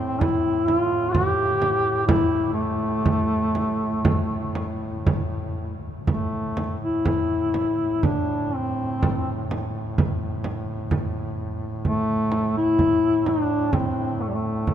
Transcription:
Already playing: A2 C4
0.21 E4, frame drum
0.67 F4, frame drum
1.12 G4, frame drum
1.62 frame drum
2.06 E4, frame drum
2.53 A3
3.06 frame drum
3.55 frame drum
4.05 frame drum
4.55 frame drum
5.07 frame drum
6.07 A2 A3, frame drum
6.57 frame drum
6.84 E4
7.05 frame drum
7.54 frame drum
8.03 D4, frame drum
8.54 C4
9.03 frame drum
9.51 frame drum
9.98 frame drum
10.44 frame drum
10.91 frame drum
11.85 A3, frame drum
12.32 frame drum
12.57 E4
12.79 frame drum
13.26 D4, frame drum
13.73 C4, frame drum
14.21 A3
14.28 G3
14.35 A3
14.67 frame drum

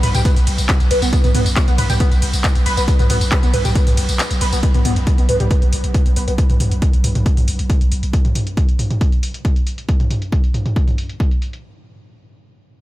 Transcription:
0.03 B1 B4, mid tom, open hi-hat, ride
0.15 B1 G4, closed hi-hat, mid tom, tambourine
0.25 B3, kick, closed hi-hat, ride, tambourine
0.36 B1, open hi-hat, tambourine
0.47 B1, open hi-hat, ride
0.58 B1, closed hi-hat, tambourine
0.69 kick, clap, closed hi-hat, ride, tambourine
0.80 B1, closed hi-hat, tambourine
0.91 B1 B4, open hi-hat, ride
1.02 B1 B3, closed hi-hat, tambourine
1.13 B3, kick, closed hi-hat, ride, tambourine
1.24 B1 B3, closed hi-hat, mid tom, tambourine
1.35 B1 B3, mid tom, open hi-hat, ride
1.46 B1, closed hi-hat, tambourine
1.56 kick, clap, closed hi-hat, tambourine
1.68 B1 B3, closed hi-hat, tambourine
1.78 B1 B4, mid tom, open hi-hat, ride
1.90 B1 G4, closed hi-hat, mid tom, tambourine
2.00 B3, kick, closed hi-hat, ride, tambourine
2.12 B1, closed hi-hat, tambourine
2.22 B1, open hi-hat, ride
2.33 B1, closed hi-hat, tambourine
2.44 kick, clap, closed hi-hat, ride, tambourine
2.55 B1, closed hi-hat, tambourine
2.66 B1 B4, open hi-hat, ride
2.77 B1 B3, closed hi-hat, tambourine
2.88 B3, kick, closed hi-hat, ride, tambourine
2.99 B1 B3, closed hi-hat, mid tom, tambourine
3.10 B1 B3, mid tom, open hi-hat, ride
3.21 B1, closed hi-hat, tambourine
3.32 kick, clap, closed hi-hat, ride
3.43 B1 B3, closed hi-hat, tambourine
3.54 B1 B4, mid tom, open hi-hat, ride
3.65 B1 G4, closed hi-hat, mid tom, tambourine
3.75 B3, kick, closed hi-hat, ride, tambourine
3.87 B1, mid tom, open hi-hat, tambourine
3.97 B1, open hi-hat, ride
4.09 B1, closed hi-hat, tambourine
4.19 clap, closed hi-hat, ride, tambourine
4.31 B1, closed hi-hat, tambourine
4.41 B1 B4, open hi-hat, ride
4.53 B1 B3, closed hi-hat, tambourine
4.63 B3, kick, closed hi-hat
4.74 B1 B3, closed hi-hat, mid tom
4.85 B1 B3, mid tom, open hi-hat
4.96 B1, closed hi-hat
5.07 kick, closed hi-hat
5.18 B1 B3, closed hi-hat
5.29 B1 B4, mid tom, open hi-hat
5.40 B1 G4, closed hi-hat, mid tom
5.51 B3, kick, closed hi-hat
5.62 B1, closed hi-hat
5.73 B1, open hi-hat
5.84 B1, closed hi-hat
5.94 kick, closed hi-hat
6.06 B1, closed hi-hat
6.16 B1 B4, open hi-hat
6.28 B1 B3, closed hi-hat
6.38 kick, closed hi-hat
6.50 B1, closed hi-hat, mid tom
6.60 B1, mid tom, open hi-hat
6.71 B1, closed hi-hat
6.82 kick, closed hi-hat
6.93 B1, closed hi-hat
7.04 B1, mid tom, open hi-hat
7.15 B1, closed hi-hat, mid tom
7.26 kick, closed hi-hat
7.37 B1, mid tom, open hi-hat
7.48 B1, open hi-hat
7.59 B1, closed hi-hat
7.70 kick, closed hi-hat
7.81 B1, closed hi-hat
7.92 B1, open hi-hat
8.03 B1, closed hi-hat
8.13 kick, closed hi-hat
8.25 closed hi-hat, mid tom
8.35 mid tom, open hi-hat
8.47 closed hi-hat
8.57 kick, closed hi-hat
8.69 closed hi-hat
8.79 mid tom, open hi-hat
8.91 closed hi-hat, mid tom
9.01 kick, closed hi-hat
9.12 closed hi-hat
9.23 open hi-hat
9.34 closed hi-hat
9.45 kick, closed hi-hat
9.56 closed hi-hat
9.67 open hi-hat
9.78 closed hi-hat
9.89 kick, closed hi-hat
10.00 closed hi-hat, mid tom
10.11 mid tom, open hi-hat
10.22 closed hi-hat
10.32 kick, closed hi-hat
10.44 closed hi-hat
10.54 mid tom, open hi-hat
10.66 closed hi-hat, mid tom
10.76 kick, closed hi-hat
10.88 mid tom, open hi-hat
10.98 open hi-hat
11.09 closed hi-hat
11.20 kick, closed hi-hat
11.31 closed hi-hat
11.42 open hi-hat
11.53 closed hi-hat

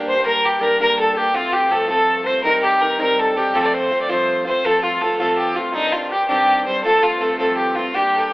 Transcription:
Already playing: G2 G4
0.00 A#3 D4
0.06 C5
0.15 A#3 D4 G4
0.24 G2 G3 A#3 D4 G4 A#4
0.43 G4
0.59 G3 A#3 D4 G4 A#4
0.78 G3 A#3 D4 G4 A#4
0.99 A4
1.15 A#3 D4 G4
1.33 F3 A3 C4 F4
1.53 G4
1.69 F3 A3 C4 F4 A4
1.88 F3 A3 C4 F4 A4
2.24 A3 C4 F4 C5
2.43 D#3 G3 C4 D#4 A#4
2.63 G4
2.79 D#3 G3 C4 D#4 A#4
2.98 D#3 G3 C4 D#4 A#4
3.19 A4
3.35 G3 C4 D#4 G4
3.54 F3 A3 C4 F4 A4
3.66 D5
3.73 C5
3.91 F3 A3 C4 F4
4.02 D5
4.09 F3 A3 C4 F4 C5
4.45 A3 C4 F4 C5
4.64 G2 F3 A3 C4 F4 A4
4.82 F4
5.01 F3 A3 C4 F4 A4
5.20 F3 A3 C4 F4 A4
5.38 G4
5.55 A3 C4 F4
5.74 D#3 G3 C4 D4 D#4
5.92 F4
6.10 D#3 G3 C4 D4 G4
6.28 D#3 G3 C4 D4 G4
6.65 G3 C4 D4 C5
6.84 F3 A3 C4 F4 A4
7.03 F4
7.19 F3 A3 C4 F4 A4
7.39 F3 A3 C4 F4 A4
7.57 G4
7.75 A3 C4 F4
7.94 G3 A#3 D4 G4
8.15 G4 A4
8.30 G3

